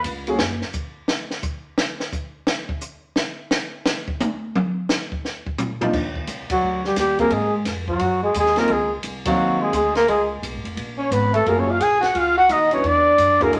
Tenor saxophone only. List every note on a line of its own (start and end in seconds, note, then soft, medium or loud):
6.50 6.82 F#3 medium
6.85 6.96 G3 medium
6.98 7.18 G3 medium
7.20 7.33 A#3 medium
7.32 7.54 G#3 medium
7.88 8.20 F#3 medium
8.22 8.34 G#3 medium
8.35 8.59 G#3 medium
8.57 8.71 A#3 medium
8.70 8.92 G#3 medium
9.26 9.58 F#3 medium
9.60 9.72 G#3 medium
9.74 9.94 G#3 medium
9.96 10.08 A#3 medium
10.08 10.29 G#3 medium
10.98 11.13 C#4 medium
11.11 11.32 B3 medium
11.33 11.49 A3 medium
11.47 11.60 A#3 medium
11.58 11.71 C#4 medium
11.69 11.81 F4 medium
11.80 12.00 G#4 medium
12.01 12.16 F#4 medium
12.14 12.37 F4 medium
12.37 12.51 F#4 medium
12.50 12.71 D#4 medium
12.71 12.87 C#4 medium
12.85 13.42 D4 medium
13.41 13.55 A#3 medium
13.53 13.60 G#3 medium